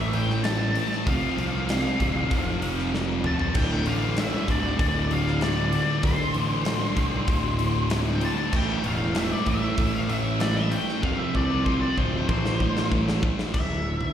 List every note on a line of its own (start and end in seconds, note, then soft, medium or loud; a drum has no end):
0.00 0.77 A1 loud
0.00 0.12 A2 medium
0.00 0.13 E3 medium
0.00 0.14 A3 loud
0.00 0.15 E5 medium
0.13 0.42 A2 medium
0.13 0.43 E3 medium
0.13 0.45 A3 medium
0.13 0.43 G5 loud
0.13 open hi-hat medium
0.30 snare soft
0.44 0.74 A2 loud
0.44 0.75 E3 loud
0.44 0.76 A3 loud
0.44 1.08 A5 loud
0.44 snare loud
0.44 open hi-hat medium
0.75 1.04 A2 medium
0.75 1.05 E3 medium
0.75 1.07 A3 medium
0.75 open hi-hat medium
0.92 snare soft
1.06 1.18 F1 loud
1.06 1.36 F2 medium
1.06 1.37 C3 loud
1.06 1.38 F3 loud
1.06 2.90 F5 medium
1.06 kick loud
1.06 open hi-hat medium
1.37 1.85 C2 medium
1.37 1.67 F2 medium
1.37 1.68 C3 loud
1.37 1.69 F3 medium
1.37 open hi-hat medium
1.69 1.98 F2 medium
1.69 1.99 C3 loud
1.69 2.00 F3 medium
1.69 snare loud
1.69 open hi-hat medium
2.00 2.24 D1 medium
2.00 2.30 F2 medium
2.00 2.30 C3 medium
2.00 2.31 F3 loud
2.00 kick medium
2.00 open hi-hat medium
2.31 3.27 F1 medium
2.31 2.61 F2 medium
2.31 2.62 C3 medium
2.31 2.63 F3 medium
2.31 kick loud
2.31 open hi-hat medium
2.62 2.92 F2 medium
2.62 2.93 C3 medium
2.62 2.94 F3 medium
2.62 open hi-hat medium
2.79 snare soft
2.93 3.23 F2 loud
2.93 3.24 C3 loud
2.93 3.25 F3 loud
2.93 snare medium
3.24 3.53 F2 medium
3.24 3.54 C3 medium
3.24 3.55 F3 medium
3.24 3.55 A5 loud
3.24 mid tom loud
3.39 floor tom medium
3.55 3.79 D1 medium
3.55 3.86 D2 medium
3.55 3.86 A2 medium
3.55 3.87 D3 loud
3.55 3.84 G5 loud
3.55 kick loud
3.55 crash loud
3.55 splash medium
3.86 4.34 A1 medium
3.86 4.17 D2 medium
3.86 4.16 A2 medium
3.86 4.18 D3 medium
3.86 4.19 F5 medium
3.86 open hi-hat medium
4.17 4.48 D2 medium
4.17 4.48 A2 medium
4.17 4.49 D3 medium
4.17 4.50 E5 medium
4.17 snare loud
4.17 open hi-hat medium
4.48 4.72 D1 medium
4.48 4.77 D2 medium
4.48 4.78 A2 medium
4.48 4.78 D3 loud
4.48 5.13 D5 loud
4.48 kick medium
4.48 snare soft
4.48 open hi-hat medium
4.78 5.75 D1 loud
4.78 5.09 D2 medium
4.78 5.10 A2 medium
4.78 5.11 D3 loud
4.78 kick loud
4.78 open hi-hat medium
5.11 5.40 D2 medium
5.11 5.41 A2 medium
5.11 5.41 D3 loud
5.11 5.42 F5 loud
5.11 open hi-hat medium
5.27 snare soft
5.41 5.71 D2 medium
5.41 5.72 A2 loud
5.41 5.72 D3 loud
5.41 6.06 D5 medium
5.41 snare loud
5.41 open hi-hat medium
5.72 6.02 D2 medium
5.72 6.03 A2 medium
5.72 6.03 D3 medium
5.72 open hi-hat medium
6.03 6.16 D1 loud
6.03 6.34 D2 medium
6.03 6.35 A2 medium
6.03 6.35 D3 loud
6.03 7.87 C5 medium
6.03 kick loud
6.03 open hi-hat medium
6.34 6.83 A1 loud
6.34 6.64 D2 medium
6.34 6.65 A2 medium
6.34 6.65 D3 medium
6.34 open hi-hat medium
6.65 6.95 D2 medium
6.65 6.96 A2 medium
6.65 6.96 D3 loud
6.65 snare loud
6.65 open hi-hat medium
6.96 7.21 C2 medium
6.96 7.27 D2 medium
6.96 7.27 A2 medium
6.96 7.28 D3 loud
6.96 kick medium
6.96 open hi-hat medium
7.28 8.24 D1 medium
7.28 7.57 D2 medium
7.28 7.58 A2 loud
7.28 7.59 D3 medium
7.28 kick loud
7.28 open hi-hat medium
7.59 7.89 D2 medium
7.59 7.89 A2 medium
7.59 7.90 D3 loud
7.59 open hi-hat medium
7.90 8.20 D2 loud
7.90 8.20 A2 loud
7.90 8.21 D3 loud
7.90 snare loud
7.90 open hi-hat medium
8.15 8.22 G5 medium
8.21 8.51 D2 medium
8.21 8.51 A2 medium
8.21 8.52 D3 medium
8.21 8.56 A5 loud
8.21 open hi-hat medium
8.52 8.77 A1 loud
8.52 8.82 A2 medium
8.52 8.82 E3 medium
8.52 8.84 A3 loud
8.52 kick loud
8.52 crash loud
8.56 8.87 G5 loud
8.83 9.33 E1 medium
8.83 9.13 A2 medium
8.83 9.14 E3 medium
8.83 9.15 A3 loud
8.83 9.17 F5 loud
8.83 open hi-hat medium
9.14 9.45 A2 medium
9.14 9.45 E3 loud
9.14 9.46 A3 loud
9.14 9.32 E5 loud
9.14 snare loud
9.14 open hi-hat medium
9.32 9.47 D5 medium
9.46 9.71 A1 medium
9.46 9.75 A2 medium
9.46 9.76 E3 medium
9.46 9.77 A3 loud
9.46 9.95 E5 loud
9.46 kick medium
9.46 open hi-hat medium
9.76 10.74 A1 loud
9.76 10.07 A2 medium
9.76 10.07 E3 loud
9.76 10.09 A3 loud
9.76 kick loud
9.76 open hi-hat medium
9.95 10.10 F5 medium
10.08 10.38 A2 medium
10.08 10.39 E3 medium
10.08 10.40 A3 medium
10.08 10.40 E5 medium
10.08 open hi-hat medium
10.39 10.70 A2 loud
10.39 10.70 E3 loud
10.39 10.72 A3 loud
10.39 10.56 D5 medium
10.39 snare loud
10.39 open hi-hat medium
10.56 10.72 E5 medium
10.71 11.01 A2 medium
10.71 11.02 E3 medium
10.71 11.04 A3 medium
10.71 11.04 G5 loud
10.71 open hi-hat medium
10.89 snare soft
11.02 11.16 F1 loud
11.02 11.33 F2 loud
11.02 11.34 C3 medium
11.02 11.35 F3 loud
11.02 11.18 F5 loud
11.02 kick loud
11.18 11.34 E5 medium
11.35 11.83 C2 loud
11.35 11.65 F2 medium
11.35 11.65 C3 medium
11.35 11.65 F3 medium
11.35 11.64 D5 medium
11.35 kick medium
11.64 11.95 F2 medium
11.64 11.96 C3 loud
11.64 11.97 F3 medium
11.64 11.81 C5 medium
11.64 kick medium
11.81 11.97 D5 medium
11.96 12.22 D1 medium
11.96 12.27 F2 loud
11.96 12.27 C3 loud
11.96 12.27 F3 loud
11.96 12.27 C5 medium
11.96 kick medium
12.28 13.25 A1 loud
12.28 12.59 A2 medium
12.28 12.60 E3 medium
12.28 12.60 A3 medium
12.28 12.87 C5 medium
12.28 kick loud
12.46 snare medium
12.60 12.90 A2 medium
12.60 12.91 E3 medium
12.60 12.91 A3 medium
12.60 kick medium
12.77 snare medium
12.91 13.21 A2 loud
12.91 13.22 E3 medium
12.91 13.22 A3 loud
12.91 kick loud
13.08 snare medium
13.23 13.52 A2 medium
13.23 13.53 E3 medium
13.23 13.53 A3 medium
13.23 kick loud
13.39 snare medium
13.54 14.03 D1 medium
13.54 14.13 E5 medium
13.54 kick loud
13.54 floor tom medium
13.54 crash loud
14.01 floor tom medium